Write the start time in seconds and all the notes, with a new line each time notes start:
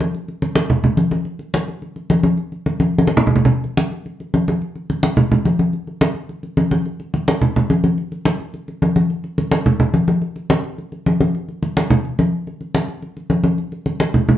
0.00 high conga
0.15 high conga
0.28 high conga
0.42 high conga
0.55 high conga
0.70 high conga, low conga
0.84 high conga, low conga
0.97 high conga
1.11 high conga
1.25 high conga
1.39 high conga
1.54 high conga
1.68 high conga
1.82 high conga
1.96 high conga
2.10 high conga
2.23 high conga
2.38 high conga
2.52 high conga
2.66 high conga
2.80 high conga
2.98 high conga
3.07 high conga
3.17 low conga
3.27 low conga
3.36 low conga
3.45 low conga
3.50 high conga
3.64 high conga
3.77 high conga
3.92 high conga
4.06 high conga
4.20 high conga
4.34 high conga
4.48 high conga
4.62 high conga
4.76 high conga
4.90 high conga
5.03 high conga
5.17 high conga, low conga
5.32 high conga, low conga
5.45 high conga
5.59 high conga
5.73 high conga
5.87 high conga
6.01 high conga
6.15 high conga
6.29 high conga
6.43 high conga
6.57 high conga
6.71 high conga
6.86 high conga
7.00 high conga
7.14 high conga
7.28 high conga
7.41 high conga, low conga
7.56 high conga, low conga
7.70 high conga
7.84 high conga
7.98 high conga
8.12 high conga
8.25 high conga
8.40 high conga
8.54 high conga
8.68 high conga
8.82 high conga
8.96 high conga
9.10 high conga
9.24 high conga
9.38 high conga
9.51 high conga
9.66 high conga, low conga
9.80 high conga, low conga
9.94 high conga
10.08 high conga
10.22 high conga
10.36 high conga
10.50 high conga
10.64 high conga
10.78 high conga
10.92 high conga
11.06 high conga
11.21 high conga
11.35 high conga
11.49 high conga
11.63 high conga
11.77 high conga
11.90 high conga, low conga
12.05 high conga
12.19 high conga
12.47 high conga
12.61 high conga
12.75 high conga
12.88 high conga
13.02 high conga
13.17 high conga
13.30 high conga
13.44 high conga
13.58 high conga
13.72 high conga
13.86 high conga
14.00 high conga
14.14 high conga, low conga
14.29 high conga, low conga